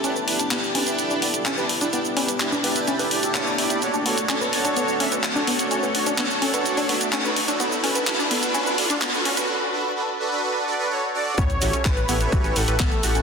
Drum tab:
HH |x-oxx-oxx-oxx-ox|x-oxx-oxxooxx-ox|x-oxx-oxx-oxx-ox|x-oxx-oxxooxx-ox|
SH |xx-xxx-xxx-xxx-x|xx-xxx-xxx-xxx-x|xx-xxx-xxx-xxx-x|xx-xxx-xxx-xxx-x|
CP |----x-------x---|----x-------x---|----x-------x---|----x-------x---|
BD |----------------|----------------|----------------|----------------|

HH |x-oxx-oxx-oxx-ox|----------------|xxoxxxoxxxoxxxox|
SH |xx-xxx-xxx-xxx-x|----------------|xxxxxxxxxxxxxxxx|
CP |----x-------x---|----------------|----x-------x---|
BD |----------------|----------------|o---o---o---o---|